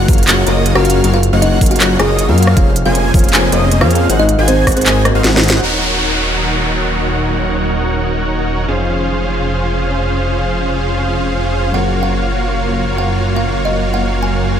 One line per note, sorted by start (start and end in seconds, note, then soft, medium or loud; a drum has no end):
0.07 0.26 F#1 loud
0.07 0.16 F#3 medium
0.07 0.25 A#3 medium
0.07 0.16 C#4 medium
0.07 0.25 F4 medium
0.07 0.16 F4 medium
0.07 0.25 F#4 medium
0.07 0.17 G#4 medium
0.07 0.17 A#4 medium
0.07 0.25 F5 medium
0.07 kick loud
0.07 open hi-hat medium
0.13 closed hi-hat medium
0.18 closed hi-hat soft
0.23 0.40 F#3 medium
0.23 closed hi-hat medium
0.27 0.45 F#1 medium
0.27 0.44 A#3 medium
0.27 0.40 C#4 medium
0.27 0.44 F4 medium
0.27 0.40 F4 medium
0.27 0.44 F#4 medium
0.27 0.41 G#4 medium
0.27 0.44 C#5 medium
0.27 0.41 C#5 medium
0.27 0.44 F#5 medium
0.27 clap loud
0.27 closed hi-hat medium
0.46 0.74 F#1 loud
0.46 0.54 F#3 loud
0.46 0.73 A#3 medium
0.46 0.54 C#4 medium
0.46 0.55 F4 medium
0.46 0.73 F4 medium
0.46 0.73 F#4 medium
0.46 0.55 G#4 medium
0.46 0.55 A#4 loud
0.46 0.73 C#5 medium
0.46 0.73 D#5 loud
0.46 closed hi-hat medium
0.66 closed hi-hat medium
0.74 1.02 F#1 loud
0.74 1.01 F#3 medium
0.74 1.02 A#3 medium
0.74 1.01 C#4 medium
0.74 1.02 F4 medium
0.74 1.02 F#4 medium
0.74 0.95 F#4 medium
0.74 1.02 G#4 medium
0.74 1.02 A#4 loud
0.74 1.02 C#5 medium
0.74 1.02 F5 medium
0.74 0.95 F#5 medium
0.74 cross-stick medium
0.85 closed hi-hat soft
0.90 closed hi-hat medium
1.03 1.31 F#1 loud
1.03 1.16 F#3 medium
1.03 1.17 A#3 medium
1.03 1.16 C#4 medium
1.03 1.17 F4 medium
1.03 1.17 F#4 medium
1.03 1.17 G#4 medium
1.03 1.17 A#4 loud
1.03 1.17 C#5 medium
1.03 1.17 F5 loud
1.03 1.17 F5 medium
1.03 closed hi-hat medium
1.14 1.28 F4 medium
1.14 1.28 F5 loud
1.23 closed hi-hat medium
1.32 1.59 F#1 medium
1.32 1.40 F#3 medium
1.32 1.59 A#3 loud
1.32 1.40 C#4 medium
1.32 1.41 F4 medium
1.32 1.59 F4 medium
1.32 1.59 F#4 medium
1.32 1.41 G#4 medium
1.32 1.59 C#5 medium
1.32 1.41 D#5 loud
1.32 1.59 F#5 loud
1.42 1.57 D#4 medium
1.42 1.57 D#5 medium
1.42 closed hi-hat medium
1.60 1.79 F#1 loud
1.60 1.69 F#3 medium
1.60 1.78 A#3 medium
1.60 1.69 C#4 medium
1.60 1.69 F4 medium
1.60 1.78 F4 medium
1.60 1.78 F#4 medium
1.60 1.70 G#4 medium
1.60 1.70 A#4 medium
1.60 1.78 F5 medium
1.60 kick medium
1.60 open hi-hat loud
1.66 closed hi-hat medium
1.71 1.85 F#4 medium
1.71 1.85 F#5 loud
1.71 closed hi-hat soft
1.76 1.93 F#3 medium
1.76 closed hi-hat medium
1.80 1.98 F#1 medium
1.80 1.97 A#3 medium
1.80 1.93 C#4 medium
1.80 1.93 F4 medium
1.80 1.97 F4 medium
1.80 1.97 F#4 medium
1.80 1.93 G#4 medium
1.80 1.97 C#5 medium
1.80 1.94 C#5 medium
1.80 1.97 F#5 medium
1.80 clap loud
1.80 closed hi-hat medium
1.99 2.30 F#1 medium
1.99 2.07 F#3 loud
1.99 2.26 A#3 medium
1.99 2.07 C#4 medium
1.99 2.08 F4 medium
1.99 2.26 F4 medium
1.99 2.26 F#4 medium
1.99 2.49 G#4 medium
1.99 2.08 G#4 medium
1.99 2.08 A#4 loud
1.99 2.26 C#5 medium
1.99 2.26 D#5 loud
1.99 2.49 G#5 loud
1.99 cross-stick medium
1.99 closed hi-hat medium
2.19 closed hi-hat medium
2.27 2.55 F#2 medium
2.27 2.54 F#3 medium
2.27 2.55 A#3 medium
2.27 2.54 C#4 medium
2.27 2.55 F4 medium
2.27 2.55 F#4 medium
2.27 2.55 G#4 medium
2.27 2.55 A#4 loud
2.27 2.55 C#5 medium
2.27 2.54 F5 medium
2.27 2.55 F5 medium
2.38 closed hi-hat soft
2.43 closed hi-hat medium
2.47 cross-stick medium
2.56 2.84 F1 loud
2.56 2.69 F3 medium
2.56 2.70 A#3 medium
2.56 2.70 C#4 medium
2.56 2.69 F4 medium
2.56 2.71 F4 medium
2.56 2.70 G#4 medium
2.56 2.70 A#4 medium
2.56 2.70 C5 medium
2.56 2.70 C#5 loud
2.56 2.71 F5 loud
2.56 2.70 F5 loud
2.56 kick loud
2.56 closed hi-hat medium
2.76 closed hi-hat medium
2.85 3.12 F1 medium
2.85 2.93 F3 medium
2.85 3.12 A#3 loud
2.85 3.12 C#4 medium
2.85 2.93 F4 medium
2.85 3.00 F4 medium
2.85 2.93 G#4 medium
2.85 3.12 G#4 medium
2.85 2.94 A#4 medium
2.85 3.12 C5 medium
2.85 2.94 C5 medium
2.85 2.94 C#5 medium
2.85 3.00 F5 medium
2.85 3.12 G#5 loud
2.95 closed hi-hat medium
3.13 3.31 F1 loud
3.13 3.22 F3 medium
3.13 3.31 A#3 medium
3.13 3.31 C#4 medium
3.13 3.22 F4 medium
3.13 3.22 G#4 medium
3.13 3.31 G#4 medium
3.13 3.22 A#4 medium
3.13 3.22 C5 medium
3.13 3.23 C#5 medium
3.13 3.31 F5 medium
3.13 kick loud
3.13 open hi-hat loud
3.19 closed hi-hat medium
3.24 closed hi-hat soft
3.29 3.45 F3 medium
3.29 closed hi-hat medium
3.33 3.50 F1 loud
3.33 3.50 A#3 medium
3.33 3.50 C#4 medium
3.33 3.46 F4 medium
3.33 3.46 G#4 medium
3.33 3.50 G#4 medium
3.33 3.46 A#4 medium
3.33 3.50 C5 medium
3.33 3.46 C5 medium
3.33 3.46 C#5 medium
3.33 3.50 G#5 medium
3.33 clap loud
3.33 closed hi-hat medium
3.51 3.83 F1 loud
3.51 3.60 F3 medium
3.51 3.79 A#3 medium
3.51 3.79 C#4 medium
3.51 3.60 F4 medium
3.51 3.60 G#4 medium
3.51 3.79 G#4 medium
3.51 3.60 A#4 medium
3.51 3.79 C5 medium
3.51 3.61 C5 medium
3.51 3.61 C#5 loud
3.51 3.79 D#5 loud
3.51 closed hi-hat medium
3.71 closed hi-hat medium
3.80 4.08 F2 loud
3.80 4.07 F3 loud
3.80 4.07 A#3 medium
3.80 4.07 C#4 medium
3.80 4.07 F4 medium
3.80 4.00 F4 medium
3.80 4.07 G#4 medium
3.80 4.08 A#4 medium
3.80 4.07 C5 medium
3.80 4.08 C5 medium
3.80 4.08 C#5 loud
3.80 4.07 F5 medium
3.80 4.00 F5 loud
3.80 cross-stick medium
3.91 closed hi-hat medium
3.95 closed hi-hat medium
4.09 4.37 G#1 loud
4.09 4.22 G#3 medium
4.09 4.22 D#4 medium
4.09 4.23 D#4 medium
4.09 4.23 F#4 medium
4.09 4.22 F#4 medium
4.09 4.23 G#4 medium
4.09 4.23 A#4 medium
4.09 4.23 C5 medium
4.09 4.23 C5 loud
4.09 4.23 F#5 loud
4.09 4.23 F#5 medium
4.09 closed hi-hat medium
4.19 4.34 D#4 medium
4.19 4.34 D#5 loud
4.29 closed hi-hat medium
4.37 4.65 G#1 loud
4.37 4.46 G#3 medium
4.37 4.46 D#4 medium
4.37 4.65 D#4 loud
4.37 4.46 F#4 medium
4.37 4.65 F#4 medium
4.37 4.65 G#4 medium
4.37 4.47 A#4 medium
4.37 4.65 C5 medium
4.37 4.47 F5 medium
4.37 4.65 G#5 loud
4.48 4.62 C4 medium
4.48 4.62 C5 medium
4.48 closed hi-hat medium
4.66 4.84 G#1 loud
4.66 4.75 G#3 medium
4.66 4.75 D#4 medium
4.66 4.75 F#4 medium
4.66 4.75 A#4 medium
4.66 4.76 C5 medium
4.66 4.84 F#5 medium
4.66 kick medium
4.66 cross-stick medium
4.66 open hi-hat loud
4.72 closed hi-hat medium
4.77 4.91 C4 medium
4.77 4.91 C5 loud
4.77 closed hi-hat soft
4.81 4.98 G#3 medium
4.81 closed hi-hat medium
4.86 5.13 G#1 medium
4.86 4.99 D#4 medium
4.86 5.03 D#4 medium
4.86 4.99 F#4 medium
4.86 5.03 F#4 medium
4.86 5.03 G#4 medium
4.86 4.99 A#4 medium
4.86 5.03 C5 medium
4.86 4.99 D#5 medium
4.86 5.03 G#5 medium
4.86 clap loud
4.86 closed hi-hat medium
5.04 5.31 G#3 medium
5.04 5.55 A#3 medium
5.04 5.32 D#4 medium
5.04 5.32 F#4 medium
5.04 5.55 A#4 medium
5.04 5.32 A#4 medium
5.04 5.32 C5 loud
5.04 cross-stick medium
5.04 closed hi-hat medium
5.15 5.22 G#1 loud
5.15 5.22 D#4 medium
5.15 5.22 F#4 medium
5.15 5.22 G#4 medium
5.15 5.22 C5 medium
5.15 5.22 F5 medium
5.24 5.61 G#1 loud
5.24 5.60 D#4 medium
5.24 5.60 F#4 medium
5.24 5.60 G#4 medium
5.24 5.60 C5 medium
5.24 5.60 F#5 loud
5.24 snare medium
5.24 closed hi-hat medium
5.33 5.41 G#3 medium
5.33 5.42 D#4 medium
5.33 5.42 F#4 medium
5.33 5.42 A#4 medium
5.33 5.42 D#5 medium
5.37 snare medium
5.43 closed hi-hat medium
5.48 snare loud
5.48 closed hi-hat medium
5.61 8.66 D#1 medium
5.61 8.65 D#3 medium
5.61 8.65 F#3 medium
5.61 8.65 A#3 medium
5.61 14.60 C#4 medium
5.61 8.66 D#4 medium
5.61 8.66 F#4 medium
5.61 8.67 F#4 medium
5.61 8.66 A#4 medium
5.61 8.66 C#5 medium
5.61 8.66 F#5 medium
5.61 downlifter medium
5.65 8.67 C#5 medium
8.66 11.72 F1 medium
8.66 11.71 F3 medium
8.66 11.71 C#4 medium
8.66 11.72 C#4 medium
8.66 11.72 D#4 medium
8.66 11.72 F4 medium
8.66 11.72 G#4 medium
8.66 11.72 C5 medium
8.66 11.71 C5 medium
8.66 11.73 C5 medium
8.66 11.72 F5 medium
8.66 14.60 F5 medium
11.72 14.60 F#1 medium
11.72 14.60 F#3 medium
11.72 14.60 A#3 medium
11.72 14.60 C#4 medium
11.72 14.60 F4 medium
11.72 14.60 F#4 medium
11.72 14.60 G#4 medium
11.72 14.60 A#4 medium
11.72 14.60 C#5 medium
11.72 14.60 F5 medium
11.72 11.89 F#5 medium
11.76 14.60 A#4 medium
12.03 12.17 F#5 medium
12.98 13.18 F#5 medium
13.36 13.51 F5 medium
13.65 13.80 D#5 medium
13.94 14.08 F#5 medium
14.23 14.60 G#5 medium